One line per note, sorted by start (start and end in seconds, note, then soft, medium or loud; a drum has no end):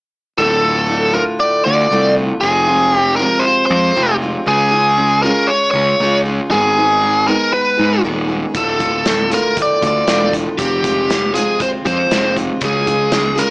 0.37 1.16 D1 medium
0.37 0.89 D2 medium
0.37 0.86 A2 medium
0.37 0.64 D3 medium
0.37 0.63 A3 medium
0.37 0.61 F4 medium
0.37 1.14 A4 medium
0.62 0.87 D3 medium
0.62 0.88 A3 medium
0.62 0.90 F4 medium
0.87 1.14 A2 medium
0.87 1.13 D3 medium
0.87 1.13 A3 medium
0.87 1.13 F4 medium
1.13 1.67 D2 medium
1.13 1.38 A2 medium
1.13 1.38 D3 medium
1.13 1.40 A3 medium
1.13 1.41 F4 medium
1.13 1.22 A#4 medium
1.39 1.90 A2 medium
1.39 1.67 D3 medium
1.39 1.66 A3 medium
1.39 1.65 F4 medium
1.39 1.64 D5 medium
1.65 1.86 D2 medium
1.65 1.91 D3 medium
1.65 1.91 A3 medium
1.65 1.93 F4 medium
1.65 2.13 D5 medium
1.91 2.30 C2 medium
1.91 2.40 D2 medium
1.91 2.41 A2 medium
1.91 2.19 D3 loud
1.91 2.17 A3 loud
1.91 2.16 F4 medium
2.17 2.42 D3 soft
2.17 2.42 A3 medium
2.17 2.46 F4 medium
2.41 3.21 F1 medium
2.41 2.93 F2 medium
2.41 2.94 C3 medium
2.41 2.70 F3 medium
2.41 2.70 G#3 medium
2.41 2.96 G#4 medium
2.45 2.68 C4 medium
2.45 2.67 F4 medium
2.67 2.93 F3 medium
2.67 2.95 G#3 medium
2.67 2.95 C4 medium
2.67 2.97 F4 medium
2.94 3.21 F3 medium
2.94 3.20 G#3 medium
2.94 3.19 C4 medium
2.94 3.19 F4 medium
2.94 3.16 G4 medium
3.16 3.45 C4 medium
3.16 3.46 F4 medium
3.16 3.44 A#4 medium
3.21 3.72 F2 medium
3.21 3.71 C3 medium
3.21 3.42 F3 medium
3.21 3.45 G#3 medium
3.40 3.65 C5 medium
3.44 3.72 F3 medium
3.44 3.72 G#3 medium
3.44 3.71 C4 medium
3.44 3.70 F4 medium
3.66 4.15 C5 medium
3.71 3.90 F2 loud
3.71 3.95 F3 soft
3.71 3.97 G#3 medium
3.71 3.97 C4 medium
3.71 3.97 F4 medium
3.96 4.35 F1 medium
3.96 4.45 F2 medium
3.96 4.45 C3 medium
3.96 4.24 F3 loud
3.96 4.23 G#3 loud
3.96 4.22 C4 medium
3.96 4.20 F4 medium
4.22 4.47 F3 medium
4.22 4.47 G#3 medium
4.22 4.46 C4 medium
4.22 4.45 F4 medium
4.46 5.25 C#2 medium
4.46 4.97 C#3 medium
4.46 4.97 G#3 medium
4.46 4.73 C#4 medium
4.46 4.72 F4 medium
4.46 5.22 G#4 medium
4.46 4.71 G#4 medium
4.71 4.97 C#4 medium
4.71 4.98 F4 medium
4.71 4.99 G#4 medium
4.97 5.26 G#3 medium
4.97 5.25 C#4 medium
4.97 5.24 F4 medium
4.97 5.24 G#4 medium
5.22 5.48 G#3 medium
5.22 5.50 C#4 medium
5.22 5.51 F4 medium
5.22 5.52 G#4 medium
5.22 5.49 A#4 medium
5.27 5.76 C#3 medium
5.47 5.99 G#3 medium
5.47 5.70 C#5 medium
5.51 5.76 C#4 medium
5.51 5.74 F4 medium
5.51 5.73 G#4 medium
5.71 5.93 C#2 medium
5.71 6.02 G#4 medium
5.71 6.20 C#5 medium
5.76 6.00 C#4 medium
5.76 6.01 F4 medium
6.00 6.39 C#2 medium
6.00 6.49 C#3 medium
6.00 6.49 G#3 medium
6.00 6.27 C#4 medium
6.00 6.26 F4 loud
6.00 6.24 G#4 medium
6.25 6.51 C#4 soft
6.25 6.50 F4 medium
6.25 6.49 G#4 medium
6.50 7.28 G#1 medium
6.50 7.02 G#2 medium
6.50 7.02 D#3 medium
6.50 6.78 G#3 medium
6.50 6.77 B3 medium
6.50 6.77 D#4 medium
6.50 7.27 G#4 medium
6.50 6.75 G#4 medium
6.77 7.00 G#3 medium
6.77 7.01 B3 medium
6.77 7.02 D#4 medium
6.77 7.03 G#4 medium
7.01 7.27 G#3 medium
7.01 7.27 B3 medium
7.01 7.26 D#4 medium
7.01 7.25 G#4 medium
7.26 7.80 G#2 medium
7.26 7.79 D#3 medium
7.26 7.51 G#3 medium
7.26 7.51 B3 medium
7.26 7.52 D#4 medium
7.26 7.54 G#4 medium
7.26 7.53 A#4 medium
7.52 7.79 G#3 medium
7.52 7.78 B3 medium
7.52 7.77 D#4 medium
7.52 7.76 G#4 medium
7.52 8.01 B4 medium
7.77 7.99 G#2 medium
7.77 8.03 G#3 soft
7.77 8.04 B3 medium
7.77 8.04 D#4 medium
7.77 8.05 G#4 medium
8.03 8.44 D#1 medium
8.03 8.53 G#2 medium
8.03 8.54 D#3 medium
8.03 8.30 G#3 medium
8.03 8.29 B3 medium
8.03 8.28 D#4 medium
8.03 8.27 G#4 loud
8.28 8.54 G#3 medium
8.28 8.54 B3 medium
8.28 8.53 D#4 medium
8.28 8.53 G#4 medium
8.54 9.33 D1 medium
8.54 9.05 D2 medium
8.54 9.03 A2 medium
8.54 8.80 D3 medium
8.54 8.79 A3 medium
8.54 8.79 F4 medium
8.54 9.29 A4 medium
8.54 kick loud
8.54 closed hi-hat medium
8.79 9.04 D3 medium
8.79 9.05 A3 medium
8.79 9.07 F4 medium
8.79 kick medium
8.79 closed hi-hat medium
9.04 9.31 A2 medium
9.04 9.31 D3 medium
9.04 9.30 A3 medium
9.04 9.30 F4 medium
9.04 snare loud
9.04 closed hi-hat medium
9.30 9.83 D2 medium
9.30 9.55 A2 medium
9.30 9.56 D3 medium
9.30 9.57 A3 medium
9.30 9.58 F4 medium
9.30 closed hi-hat medium
9.34 9.57 A#4 medium
9.56 10.07 A2 medium
9.56 9.83 D3 medium
9.56 9.82 A3 medium
9.56 9.81 F4 medium
9.56 kick loud
9.56 closed hi-hat medium
9.62 9.86 D5 medium
9.81 10.02 D2 medium
9.81 10.08 D3 medium
9.81 10.09 A3 medium
9.81 10.10 F4 medium
9.81 kick medium
9.81 closed hi-hat medium
9.87 10.32 D5 medium
10.07 10.47 E1 medium
10.07 10.57 D2 medium
10.07 10.57 A2 medium
10.07 10.35 D3 medium
10.07 10.33 A3 medium
10.07 10.32 F4 medium
10.07 snare loud
10.07 closed hi-hat medium
10.33 10.59 D3 medium
10.33 10.58 A3 medium
10.33 10.60 F4 medium
10.33 kick medium
10.33 closed hi-hat medium
10.58 11.37 F1 medium
10.58 11.09 F2 medium
10.58 11.10 C3 medium
10.58 10.86 F3 medium
10.58 10.85 G#3 medium
10.58 10.83 C4 medium
10.58 10.83 F4 medium
10.58 11.34 G4 medium
10.58 kick loud
10.58 closed hi-hat medium
10.84 11.08 F3 medium
10.84 11.09 G#3 medium
10.84 11.10 C4 medium
10.84 11.12 F4 medium
10.84 kick medium
10.84 closed hi-hat medium
11.08 11.36 F3 medium
11.08 11.35 G#3 medium
11.08 11.34 C4 medium
11.08 11.34 F4 medium
11.08 snare loud
11.08 closed hi-hat medium
11.34 11.87 F2 medium
11.34 11.87 C3 medium
11.34 11.57 F3 medium
11.34 11.59 G#3 medium
11.34 11.59 C4 medium
11.34 11.59 F4 medium
11.34 11.58 G#4 medium
11.34 closed hi-hat medium
11.58 11.86 F3 medium
11.58 11.86 G#3 medium
11.58 11.85 C4 medium
11.58 11.83 F4 medium
11.58 kick loud
11.58 closed hi-hat medium
11.62 11.69 C5 loud
11.84 12.06 F2 medium
11.84 12.11 F3 soft
11.84 12.13 G#3 medium
11.84 12.12 C4 medium
11.84 12.13 F4 medium
11.84 12.34 C5 medium
11.84 kick medium
11.84 closed hi-hat medium
12.11 12.51 F1 medium
12.11 12.61 F2 medium
12.11 12.60 C3 medium
12.11 12.38 F3 medium
12.11 12.38 G#3 loud
12.11 12.36 C4 medium
12.11 12.35 F4 medium
12.11 snare loud
12.11 closed hi-hat medium
12.36 12.61 F3 soft
12.36 12.62 G#3 medium
12.36 12.61 C4 medium
12.36 12.61 F4 medium
12.36 kick medium
12.36 closed hi-hat medium
12.60 13.40 C#2 medium
12.60 13.12 C#3 medium
12.60 13.10 G#3 medium
12.60 12.88 C#4 medium
12.60 12.86 F4 medium
12.60 12.86 G#4 medium
12.60 kick loud
12.60 closed hi-hat medium
12.65 13.42 G#4 medium
12.86 13.11 C#4 medium
12.86 13.11 F4 medium
12.86 13.13 G#4 medium
12.86 kick medium
12.86 closed hi-hat medium
13.10 13.38 G#3 medium
13.10 13.37 C#4 medium
13.10 13.36 F4 medium
13.10 13.35 G#4 medium
13.10 snare loud
13.10 closed hi-hat medium
13.36 13.50 C#3 medium
13.36 13.50 G#3 medium
13.36 13.50 C#4 medium
13.36 13.50 F4 medium
13.36 13.50 G#4 medium
13.36 13.50 A#4 medium
13.36 closed hi-hat medium